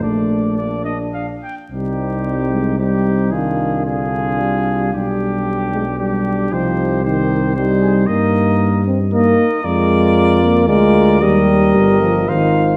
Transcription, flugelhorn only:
\new Staff \with { instrumentName = "Flugelhorn" } { \time 3/4 \key bes \major \tempo 4 = 113 d'2~ d'8 r8 | \key c \minor ees'2 ees'4 | f'4 f'2 | g'2 g'4 |
g'4 g'4 g'8 aes'8 | \key ees \major bes'4. r8 bes'4 | bes'2 bes'4 | bes'2 c''4 | }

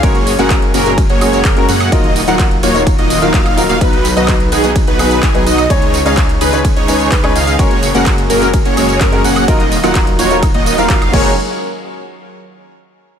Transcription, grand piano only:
\new Staff \with { instrumentName = "Grand piano" } { \time 4/4 \key fis \major \tempo 4 = 127 <gis cis' fis' ais'>16 r8 <gis cis' fis' ais'>4 <gis cis' fis' ais'>16 r8 <gis cis' fis' gis'>8 r16 <gis cis' fis' ais'>16 r8 | <fis dis' eis' ais'>16 r8 <fis dis' eis' ais'>4 <fis dis' eis' ais'>16 r8. <fis dis' eis' ais'>8 r16 <fis dis' eis' ais'>16 r16 | <fis b dis' b'>16 r8 <fis b dis' b'>4 <fis b dis' b'>16 r8 <fis b dis' gis'>8 r16 <fis b dis' b'>16 r8 | <gis cis' dis' cis''>16 r8 <gis cis' dis' cis''>4 <gis cis' dis' cis''>16 r8 <gis cis' dis' b'>8 r16 <gis cis' dis' cis''>16 r8 |
<gis cis' fis' ais'>16 r8 <gis cis' fis' ais'>4 <gis cis' fis' ais'>16 r8 <gis cis' fis' gis'>8 r16 <gis cis' fis' ais'>16 r8 | <fis dis' eis' ais'>16 r8 <fis dis' eis' ais'>4 <fis dis' eis' ais'>16 r8. <fis dis' eis' ais'>8 r16 <gis cis' fis' ais'>8 | r1 | }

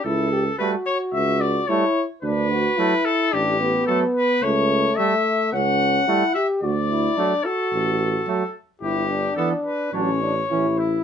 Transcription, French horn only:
\new Staff \with { instrumentName = "French horn" } { \time 4/4 \key d \major \tempo 4 = 109 e'8 g'8 fis'2 e'8 r8 | d'8 fis'8 e'4 d'8 b4. | a2 cis'4 e'8 g'8 | fis'8 e'8 d'8 fis'2 r8 |
e'8 d'4. cis'8 d'8 e'4 | }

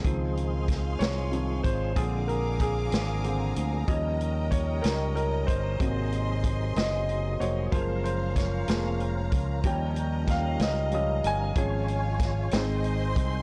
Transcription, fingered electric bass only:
\new Staff \with { instrumentName = "Fingered electric bass" } { \clef bass \time 6/8 \key des \major \tempo 4. = 62 des,4. c,4 aes,,8 | bes,,4. aes,,4 d,8 | ees,4. des,4 g,,8 | aes,,4. ges,,4 f,,8 |
ges,,4. f,,4 des,8 | ees,4. des,4 g,,8 | aes,,4. aes,,4 c,8 | }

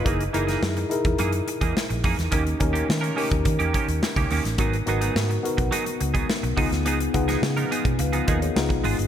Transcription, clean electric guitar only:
\new Staff \with { instrumentName = "Clean electric guitar" } { \time 4/4 \key cis \dorian \tempo 4 = 106 <e ais dis' gis'>16 r16 <e ais dis' gis'>16 <e ais dis' gis'>16 r4 <e ais dis' gis'>16 r8 <e ais dis' gis'>16 r8 <e ais dis' gis'>16 r16 | <dis ais cis' g'>16 r8 <dis ais cis' g'>16 r16 <dis ais cis' ais'>16 <dis ais cis' g'>16 r8 <dis ais cis' g'>16 <dis ais cis' g'>16 r8 <dis ais cis' g'>16 <dis ais cis' g'>16 r16 | <fis b dis' gis'>16 r16 <fis b dis' gis'>16 <fis b dis' gis'>16 r4 <fis b dis' gis'>16 r8 <fis b dis' gis'>16 r8 <eis b dis' gis'>16 r16 | <eis b dis' gis'>16 r8 <eis b dis' gis'>16 r16 <eis b dis' ais'>16 <eis b dis' gis'>16 r8 <eis b dis' gis'>16 <eis b dis' gis'>16 r8. <gis b eis' gis'>16 r16 | }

